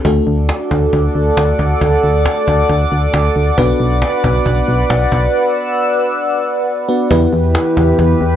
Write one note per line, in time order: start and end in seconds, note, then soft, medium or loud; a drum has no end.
0.05 0.20 D2 loud
0.05 3.54 A3 medium
0.05 3.54 D4 medium
0.05 3.54 F#4 medium
0.05 3.54 A4 medium
0.05 3.54 D5 medium
0.05 3.54 F#5 medium
0.05 5.30 D6 medium
0.05 cajon bass loud
0.16 cajon slap soft
0.27 0.50 D2 loud
0.27 cajon slap soft
0.38 cajon slap soft
0.49 cajon slap loud
0.60 cajon slap soft
0.71 0.86 D2 loud
0.71 cajon bass loud
0.82 cajon slap soft
0.93 1.08 D2 loud
0.93 cajon bass medium
1.04 cajon slap soft
1.15 1.31 D2 medium
1.15 cajon slap soft
1.26 cajon slap soft
1.37 1.53 D2 loud
1.37 cajon slap loud
1.48 cajon slap soft
1.59 1.75 D2 medium
1.59 cajon bass medium
1.70 cajon slap soft
1.81 1.97 D2 loud
1.81 cajon bass loud
1.92 cajon slap soft
2.03 2.27 D2 loud
2.03 cajon slap soft
2.14 cajon slap soft
2.25 cajon slap loud
2.37 cajon slap soft
2.48 2.63 D2 loud
2.48 cajon bass loud
2.58 cajon slap soft
2.69 2.85 D2 loud
2.69 cajon bass medium
2.81 cajon slap soft
2.92 3.07 D2 loud
2.92 cajon slap soft
3.03 cajon slap soft
3.14 3.29 D2 loud
3.14 cajon slap loud
3.25 cajon slap soft
3.36 3.51 D2 medium
3.36 cajon slap soft
3.47 cajon slap soft
3.58 3.73 B1 loud
3.58 6.85 B3 medium
3.58 6.85 D4 medium
3.58 6.85 F#4 medium
3.58 6.85 B4 medium
3.58 7.07 B4 medium
3.58 7.07 D5 medium
3.58 7.07 F#5 medium
3.58 cajon bass loud
3.69 cajon slap soft
3.80 4.03 B1 loud
3.80 cajon slap soft
3.91 cajon slap soft
4.02 cajon slap loud
4.13 cajon slap soft
4.24 4.39 B1 loud
4.24 cajon bass loud
4.35 cajon slap soft
4.46 4.61 B1 loud
4.46 cajon bass medium
4.57 cajon slap soft
4.68 4.83 B1 loud
4.68 cajon slap soft
4.79 cajon slap soft
4.90 5.06 B1 loud
4.90 cajon slap loud
5.01 cajon slap soft
5.12 5.27 B1 loud
5.12 cajon bass medium
5.23 cajon slap soft
5.34 7.09 E6 medium
6.89 7.09 B3 medium
6.89 7.11 D4 medium
6.89 7.11 F#4 medium
6.89 7.09 B4 medium
7.11 7.26 E2 loud
7.11 8.36 E3 medium
7.11 8.36 B3 medium
7.11 8.36 E4 medium
7.11 8.36 G4 medium
7.11 8.36 B4 medium
7.11 cajon bass loud
7.22 cajon slap soft
7.33 7.56 E2 loud
7.33 cajon slap soft
7.44 cajon slap soft
7.55 cajon slap loud
7.66 cajon slap soft
7.77 7.92 E2 loud
7.77 cajon bass loud
7.88 cajon slap soft
7.99 8.14 E2 loud
7.99 cajon bass medium
8.10 cajon slap soft
8.21 8.36 E2 loud
8.21 cajon slap soft
8.32 cajon slap soft